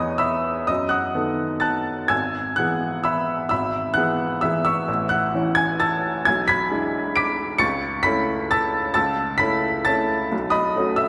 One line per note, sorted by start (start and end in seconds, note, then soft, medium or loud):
0.00 0.71 E2 medium
0.00 0.65 E3 soft
0.00 0.65 B3 soft
0.00 0.66 G#4 soft
0.00 0.71 C#5 medium
0.00 0.20 D#5 medium
0.00 0.19 B5 medium
0.00 0.71 C#6 medium
0.00 0.21 D#6 medium
0.18 0.65 E5 medium
0.18 0.64 B5 medium
0.18 0.67 E6 medium
0.67 1.15 F#2 medium
0.67 0.90 D#5 medium
0.67 0.89 D#6 medium
0.89 1.59 F#5 medium
0.89 1.59 D#6 medium
0.89 1.60 F#6 medium
1.14 2.07 D#3 soft
1.14 2.07 B3 soft
1.14 2.07 A4 soft
1.60 2.07 A5 medium
1.60 2.07 F#6 medium
1.60 2.09 A6 medium
2.08 2.56 G#1 soft
2.08 2.53 G#5 medium
2.08 2.53 E6 medium
2.08 2.56 G#6 medium
2.56 3.47 E3 soft
2.56 3.47 B3 soft
2.56 3.48 G#4 soft
2.56 3.01 F#5 medium
2.56 3.04 F#6 medium
3.04 3.48 E5 medium
3.04 3.48 B5 medium
3.04 3.48 E6 medium
3.49 3.95 G#1 medium
3.49 3.93 E5 medium
3.49 3.93 B5 medium
3.49 3.95 E6 medium
3.94 4.39 E3 soft
3.94 4.39 B3 soft
3.94 4.40 G#4 soft
3.94 4.39 F#5 medium
3.94 4.42 F#6 medium
4.41 4.84 E3 soft
4.41 4.85 B3 soft
4.41 4.85 G#4 soft
4.41 4.64 E5 medium
4.41 4.63 E6 medium
4.65 5.07 E5 medium
4.65 5.07 C#6 medium
4.65 5.09 E6 medium
4.88 5.32 A1 medium
5.09 5.53 F#5 medium
5.09 5.56 F#6 medium
5.34 6.23 E3 soft
5.34 6.24 C#4 soft
5.34 6.24 E4 soft
5.55 5.79 G#5 medium
5.55 5.80 G#6 medium
5.80 6.23 A5 medium
5.80 6.23 E6 medium
5.80 6.26 A6 medium
6.25 6.71 B1 medium
6.25 6.47 G#5 medium
6.25 6.48 G#6 medium
6.48 7.13 B5 medium
6.48 7.13 G#6 medium
6.48 7.15 B6 loud
6.71 7.58 G#3 soft
6.71 7.58 D4 soft
6.71 7.58 E4 soft
7.16 7.59 D6 medium
7.16 7.59 B6 medium
7.16 7.61 D7 loud
7.58 8.05 C#2 medium
7.58 8.02 C#6 medium
7.58 8.02 A6 medium
7.58 8.05 C#7 loud
8.03 8.92 A3 soft
8.03 8.92 C#4 soft
8.03 8.93 E4 medium
8.03 8.47 B5 medium
8.03 8.50 B6 loud
8.51 8.93 A5 medium
8.51 8.93 E6 medium
8.51 8.92 A6 loud
8.94 9.39 C#2 medium
8.94 9.37 A5 medium
8.94 9.37 E6 medium
8.94 9.39 A6 loud
9.38 9.83 A3 soft
9.38 9.83 C#4 soft
9.38 9.83 E4 soft
9.38 9.83 B5 medium
9.38 9.85 B6 loud
9.85 10.28 A3 soft
9.85 10.28 C#4 soft
9.85 10.29 E4 medium
9.85 10.08 A5 medium
9.85 10.09 A6 loud
10.32 10.75 B1 medium
10.50 10.95 D#5 medium
10.50 10.95 B5 medium
10.50 10.97 D#6 medium
10.76 11.09 A3 medium
10.76 11.09 C#4 soft
10.76 11.09 F#4 soft
10.96 11.09 E5 medium
10.96 11.09 E6 medium